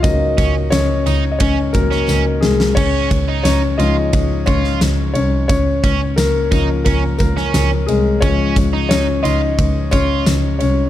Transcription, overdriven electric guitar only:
\new Staff \with { instrumentName = "Overdriven electric guitar" } { \time 4/4 \key des \major \tempo 4 = 88 r8 des'16 r8. ees'16 r16 des'16 r8 des'8 r8. | des'8 r16 ees'8 r16 f'16 r8. f'8 r4 | r8 des'16 r8. ees'16 r16 des'16 r8 des'8 r8. | des'8 r16 ees'8 r16 f'16 r8. f'8 r4 | }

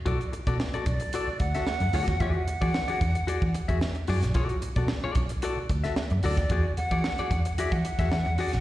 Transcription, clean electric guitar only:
\new Staff \with { instrumentName = "Clean electric guitar" } { \time 4/4 \key b \dorian \tempo 4 = 112 <fis' a' d''>16 r8 <fis' a' d''>16 r16 <fis' a' d''>16 r8 <fis' a' d''>16 r8 <fis' a' e''>16 r8 <fis' a' d''>16 r16 | <fis' gis' d''>16 r8 <fis' gis' d''>16 r16 <fis' gis' d''>16 r8 <fis' gis' d''>16 r8 <fis' gis' e''>16 r8 <fis' gis' d''>16 r16 | <fis' a' d''>16 r8 <fis' a' d''>16 r16 <fis' a' d''>16 r8 <fis' a' d''>16 r8 <fis' a' e''>16 r8 <fis' a' d''>16 r16 | <fis' gis' d''>16 r8 <fis' gis' d''>16 r16 <fis' gis' d''>16 r8 <fis' gis' d''>16 r8 <fis' gis' e''>16 r8 <fis' gis' d''>16 r16 | }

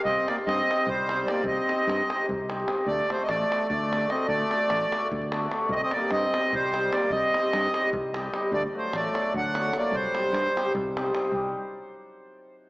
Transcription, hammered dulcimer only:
\new Staff \with { instrumentName = "Hammered dulcimer" } { \time 7/8 \tempo 4 = 149 r8 <c' ees' g' c''>8 r8 <c' ees' g' c''>8 r8 <c' ees' g' c''>8 <c' ees' g' c''>8 | r8 <c' ees' g' c''>8 r8 <c' ees' g' c''>8 r8 <c' ees' g' c''>8 <c' ees' g' c''>8 | r8 <a d' fis' a'>8 r8 <a d' fis' a'>8 r8 <a d' fis' a'>8 <a d' fis' a'>8 | r8 <a d' fis' a'>8 r8 <a d' fis' a'>8 r8 <a d' fis' a'>8 <a d' fis' a'>8 |
r8 <g c' ees' g'>8 r8 <g c' ees' g'>8 r8 <g c' ees' g'>8 <g c' ees' g'>8 | r8 <g c' ees' g'>8 r8 <g c' ees' g'>8 r8 <g c' ees' g'>8 <g c' ees' g'>8 | r8 <fis a d' fis'>8 r8 <fis a d' fis'>8 r8 <fis a d' fis'>8 <fis a d' fis'>8 | r8 <g c' ees' g'>8 r8 <g c' ees' g'>8 r8 <g c' ees' g'>8 <g c' ees' g'>8 |
<g c' ees' g'>8 r2. | }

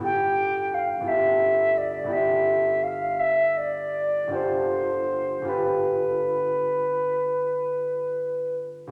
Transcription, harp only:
\new Staff \with { instrumentName = "Harp" } { \time 12/8 \key g \mixolydian \tempo 4. = 53 <g,, b e' g' a'>4. <g,, b e' g' a'>4. <g,, b e' g' a'>2. | <g,, d' f' g' a'>4. <g,, d' f' g' a'>1~ <g,, d' f' g' a'>8 | }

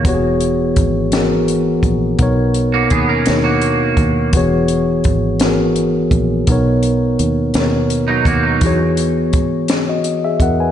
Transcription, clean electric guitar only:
\new Staff \with { instrumentName = "Clean electric guitar" } { \time 6/8 \key e \lydian \tempo 4. = 56 r2. | r8. <ais fis'>16 <b gis'>16 <cis' ais'>8 <ais fis'>4~ <ais fis'>16 | r2. | r2 r16 <fis dis'>16 <ais fis'>16 <fis dis'>16~ |
<fis dis'>16 r2 r8. | }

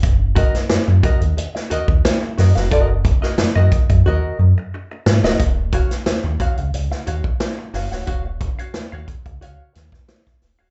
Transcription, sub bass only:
\new Staff \with { instrumentName = "Sub bass" } { \clef bass \time 4/4 \key ees \minor \tempo 4 = 90 ges,,8. r16 ges,16 ges,16 r16 ees,16 r8 ees,16 ees,16 r8 ges,16 f,,16 | ges,,8. r16 ges,16 ges,16 r16 ges,16 ees,16 r16 ges,16 r8. aes,16 d,,16 | ees,,8. r16 ees,16 ees,16 r16 des,16 des,16 r16 ees,16 r8. ges,,16 d,,16 | ees,,8. r16 ees,16 ees,16 r16 des,16 des,16 r16 ees,16 r8. ees,,16 d,,16 | }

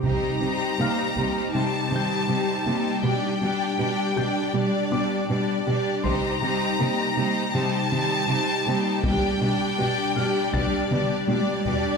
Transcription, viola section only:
\new Staff \with { instrumentName = "Viola section" } { \time 4/4 \key c \dorian \tempo 4 = 80 <g ees'>8 <g ees'>8 <g ees'>8 <g ees'>8 <g ees'>8 <g ees'>8 <g ees'>8 <g ees'>8 | <g d'>8 <g d'>8 <g d'>8 <g d'>8 <g d'>8 <g d'>8 <g d'>8 <g d'>8 | <g ees'>8 <g ees'>8 <g ees'>8 <g ees'>8 <g ees'>8 <g ees'>8 <g ees'>8 <g ees'>8 | <g d'>8 <g d'>8 <g d'>8 <g d'>8 <g d'>8 <g d'>8 <g d'>8 <g d'>8 | }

